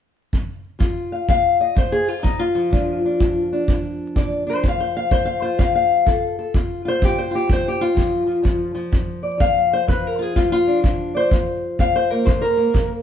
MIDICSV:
0, 0, Header, 1, 3, 480
1, 0, Start_track
1, 0, Tempo, 477327
1, 822, Time_signature, 4, 2, 24, 8
1, 13095, End_track
2, 0, Start_track
2, 0, Title_t, "Steel-string acoustic guitar"
2, 0, Program_c, 0, 25
2, 792, Note_on_c, 0, 41, 68
2, 800, Note_on_c, 0, 65, 46
2, 1128, Note_on_c, 0, 77, 49
2, 1253, Note_off_c, 0, 41, 0
2, 1294, Note_on_c, 0, 41, 76
2, 1298, Note_off_c, 0, 77, 0
2, 1302, Note_on_c, 0, 77, 107
2, 1611, Note_off_c, 0, 77, 0
2, 1615, Note_on_c, 0, 75, 75
2, 1744, Note_off_c, 0, 41, 0
2, 1764, Note_on_c, 0, 41, 72
2, 1778, Note_off_c, 0, 75, 0
2, 1789, Note_on_c, 0, 72, 84
2, 1929, Note_off_c, 0, 65, 0
2, 1933, Note_on_c, 0, 68, 81
2, 1945, Note_off_c, 0, 72, 0
2, 2095, Note_off_c, 0, 68, 0
2, 2095, Note_on_c, 0, 65, 83
2, 2218, Note_off_c, 0, 41, 0
2, 2241, Note_on_c, 0, 63, 87
2, 2252, Note_on_c, 0, 41, 73
2, 2258, Note_off_c, 0, 65, 0
2, 2407, Note_on_c, 0, 65, 89
2, 2411, Note_off_c, 0, 63, 0
2, 2564, Note_on_c, 0, 53, 52
2, 2702, Note_off_c, 0, 41, 0
2, 2718, Note_on_c, 0, 46, 67
2, 2736, Note_on_c, 0, 62, 45
2, 3048, Note_off_c, 0, 62, 0
2, 3069, Note_on_c, 0, 62, 45
2, 3176, Note_off_c, 0, 46, 0
2, 3224, Note_on_c, 0, 46, 73
2, 3532, Note_off_c, 0, 62, 0
2, 3544, Note_on_c, 0, 62, 47
2, 3669, Note_off_c, 0, 46, 0
2, 3711, Note_on_c, 0, 46, 75
2, 3854, Note_off_c, 0, 65, 0
2, 4152, Note_off_c, 0, 46, 0
2, 4180, Note_on_c, 0, 46, 69
2, 4184, Note_on_c, 0, 74, 52
2, 4479, Note_off_c, 0, 62, 0
2, 4491, Note_on_c, 0, 62, 48
2, 4502, Note_off_c, 0, 74, 0
2, 4522, Note_on_c, 0, 72, 91
2, 4626, Note_off_c, 0, 46, 0
2, 4651, Note_on_c, 0, 41, 70
2, 4661, Note_off_c, 0, 62, 0
2, 4671, Note_off_c, 0, 72, 0
2, 4710, Note_on_c, 0, 77, 89
2, 4830, Note_on_c, 0, 72, 78
2, 4845, Note_off_c, 0, 77, 0
2, 4985, Note_off_c, 0, 72, 0
2, 4993, Note_on_c, 0, 77, 94
2, 5102, Note_off_c, 0, 41, 0
2, 5145, Note_on_c, 0, 41, 77
2, 5145, Note_on_c, 0, 72, 93
2, 5147, Note_off_c, 0, 77, 0
2, 5283, Note_on_c, 0, 77, 91
2, 5302, Note_off_c, 0, 72, 0
2, 5450, Note_on_c, 0, 72, 80
2, 5452, Note_off_c, 0, 77, 0
2, 5467, Note_on_c, 0, 65, 43
2, 5589, Note_off_c, 0, 41, 0
2, 5615, Note_off_c, 0, 72, 0
2, 5618, Note_on_c, 0, 77, 97
2, 5619, Note_on_c, 0, 41, 77
2, 5775, Note_off_c, 0, 77, 0
2, 5787, Note_on_c, 0, 77, 89
2, 6066, Note_off_c, 0, 41, 0
2, 6083, Note_off_c, 0, 53, 0
2, 6091, Note_on_c, 0, 41, 72
2, 6103, Note_on_c, 0, 69, 53
2, 6263, Note_off_c, 0, 77, 0
2, 6411, Note_off_c, 0, 69, 0
2, 6423, Note_on_c, 0, 69, 50
2, 6541, Note_off_c, 0, 41, 0
2, 6566, Note_off_c, 0, 69, 0
2, 6585, Note_on_c, 0, 41, 69
2, 6586, Note_off_c, 0, 65, 0
2, 6590, Note_on_c, 0, 65, 47
2, 6885, Note_off_c, 0, 65, 0
2, 6888, Note_on_c, 0, 65, 47
2, 6921, Note_on_c, 0, 72, 105
2, 7020, Note_off_c, 0, 41, 0
2, 7032, Note_on_c, 0, 41, 75
2, 7070, Note_off_c, 0, 72, 0
2, 7084, Note_on_c, 0, 67, 86
2, 7223, Note_on_c, 0, 72, 85
2, 7232, Note_off_c, 0, 67, 0
2, 7344, Note_off_c, 0, 65, 0
2, 7349, Note_on_c, 0, 65, 44
2, 7381, Note_off_c, 0, 72, 0
2, 7392, Note_on_c, 0, 67, 80
2, 7491, Note_off_c, 0, 41, 0
2, 7518, Note_on_c, 0, 41, 76
2, 7546, Note_off_c, 0, 67, 0
2, 7569, Note_on_c, 0, 72, 104
2, 7714, Note_off_c, 0, 72, 0
2, 7724, Note_on_c, 0, 67, 82
2, 7851, Note_off_c, 0, 65, 0
2, 7855, Note_on_c, 0, 65, 91
2, 7871, Note_off_c, 0, 67, 0
2, 7974, Note_off_c, 0, 41, 0
2, 7992, Note_on_c, 0, 41, 74
2, 8004, Note_on_c, 0, 53, 49
2, 8307, Note_off_c, 0, 53, 0
2, 8311, Note_on_c, 0, 53, 45
2, 8451, Note_off_c, 0, 41, 0
2, 8470, Note_on_c, 0, 41, 67
2, 8477, Note_off_c, 0, 53, 0
2, 8481, Note_on_c, 0, 53, 50
2, 8790, Note_off_c, 0, 53, 0
2, 8794, Note_on_c, 0, 53, 45
2, 8817, Note_off_c, 0, 65, 0
2, 8930, Note_off_c, 0, 41, 0
2, 8967, Note_on_c, 0, 41, 77
2, 9280, Note_on_c, 0, 74, 46
2, 9419, Note_off_c, 0, 41, 0
2, 9432, Note_on_c, 0, 41, 74
2, 9455, Note_off_c, 0, 74, 0
2, 9459, Note_on_c, 0, 77, 104
2, 9779, Note_off_c, 0, 77, 0
2, 9788, Note_on_c, 0, 72, 90
2, 9891, Note_off_c, 0, 41, 0
2, 9929, Note_on_c, 0, 41, 75
2, 9938, Note_off_c, 0, 72, 0
2, 9942, Note_on_c, 0, 71, 82
2, 10124, Note_off_c, 0, 71, 0
2, 10124, Note_on_c, 0, 70, 84
2, 10244, Note_on_c, 0, 65, 49
2, 10277, Note_off_c, 0, 70, 0
2, 10277, Note_on_c, 0, 68, 84
2, 10380, Note_off_c, 0, 41, 0
2, 10414, Note_off_c, 0, 65, 0
2, 10414, Note_on_c, 0, 41, 71
2, 10419, Note_on_c, 0, 65, 91
2, 10428, Note_off_c, 0, 68, 0
2, 10567, Note_off_c, 0, 65, 0
2, 10579, Note_on_c, 0, 65, 103
2, 10732, Note_on_c, 0, 62, 49
2, 10842, Note_off_c, 0, 65, 0
2, 10863, Note_off_c, 0, 41, 0
2, 10895, Note_on_c, 0, 41, 73
2, 11208, Note_on_c, 0, 74, 48
2, 11225, Note_off_c, 0, 62, 0
2, 11229, Note_on_c, 0, 72, 99
2, 11343, Note_off_c, 0, 41, 0
2, 11379, Note_on_c, 0, 41, 74
2, 11384, Note_off_c, 0, 72, 0
2, 11393, Note_off_c, 0, 74, 0
2, 11393, Note_on_c, 0, 77, 93
2, 11825, Note_off_c, 0, 41, 0
2, 11853, Note_off_c, 0, 77, 0
2, 11865, Note_on_c, 0, 77, 102
2, 11873, Note_on_c, 0, 41, 79
2, 12022, Note_off_c, 0, 77, 0
2, 12024, Note_on_c, 0, 72, 92
2, 12172, Note_off_c, 0, 72, 0
2, 12172, Note_on_c, 0, 70, 77
2, 12184, Note_on_c, 0, 58, 50
2, 12312, Note_off_c, 0, 41, 0
2, 12318, Note_on_c, 0, 46, 72
2, 12324, Note_on_c, 0, 72, 89
2, 12333, Note_off_c, 0, 53, 0
2, 12336, Note_off_c, 0, 70, 0
2, 12485, Note_on_c, 0, 70, 100
2, 12491, Note_off_c, 0, 72, 0
2, 12631, Note_off_c, 0, 58, 0
2, 12643, Note_on_c, 0, 58, 47
2, 12776, Note_off_c, 0, 46, 0
2, 12807, Note_on_c, 0, 46, 80
2, 12973, Note_off_c, 0, 70, 0
2, 13095, Note_off_c, 0, 46, 0
2, 13095, Note_off_c, 0, 58, 0
2, 13095, End_track
3, 0, Start_track
3, 0, Title_t, "Drums"
3, 332, Note_on_c, 9, 36, 57
3, 432, Note_off_c, 9, 36, 0
3, 809, Note_on_c, 9, 36, 64
3, 909, Note_off_c, 9, 36, 0
3, 1293, Note_on_c, 9, 36, 69
3, 1393, Note_off_c, 9, 36, 0
3, 1776, Note_on_c, 9, 36, 69
3, 1876, Note_off_c, 9, 36, 0
3, 2257, Note_on_c, 9, 36, 59
3, 2357, Note_off_c, 9, 36, 0
3, 2743, Note_on_c, 9, 36, 68
3, 2844, Note_off_c, 9, 36, 0
3, 3222, Note_on_c, 9, 36, 65
3, 3323, Note_off_c, 9, 36, 0
3, 3702, Note_on_c, 9, 36, 69
3, 3802, Note_off_c, 9, 36, 0
3, 4184, Note_on_c, 9, 36, 61
3, 4284, Note_off_c, 9, 36, 0
3, 4664, Note_on_c, 9, 36, 62
3, 4764, Note_off_c, 9, 36, 0
3, 5141, Note_on_c, 9, 36, 67
3, 5242, Note_off_c, 9, 36, 0
3, 5621, Note_on_c, 9, 36, 67
3, 5722, Note_off_c, 9, 36, 0
3, 6101, Note_on_c, 9, 36, 63
3, 6201, Note_off_c, 9, 36, 0
3, 6581, Note_on_c, 9, 36, 67
3, 6681, Note_off_c, 9, 36, 0
3, 7059, Note_on_c, 9, 36, 71
3, 7160, Note_off_c, 9, 36, 0
3, 7537, Note_on_c, 9, 36, 72
3, 7638, Note_off_c, 9, 36, 0
3, 8016, Note_on_c, 9, 36, 60
3, 8116, Note_off_c, 9, 36, 0
3, 8497, Note_on_c, 9, 36, 65
3, 8597, Note_off_c, 9, 36, 0
3, 8976, Note_on_c, 9, 36, 69
3, 9077, Note_off_c, 9, 36, 0
3, 9456, Note_on_c, 9, 36, 70
3, 9557, Note_off_c, 9, 36, 0
3, 9940, Note_on_c, 9, 36, 65
3, 10040, Note_off_c, 9, 36, 0
3, 10419, Note_on_c, 9, 36, 63
3, 10520, Note_off_c, 9, 36, 0
3, 10900, Note_on_c, 9, 36, 67
3, 11000, Note_off_c, 9, 36, 0
3, 11377, Note_on_c, 9, 36, 73
3, 11478, Note_off_c, 9, 36, 0
3, 11857, Note_on_c, 9, 36, 60
3, 11958, Note_off_c, 9, 36, 0
3, 12337, Note_on_c, 9, 36, 68
3, 12437, Note_off_c, 9, 36, 0
3, 12817, Note_on_c, 9, 36, 66
3, 12917, Note_off_c, 9, 36, 0
3, 13095, End_track
0, 0, End_of_file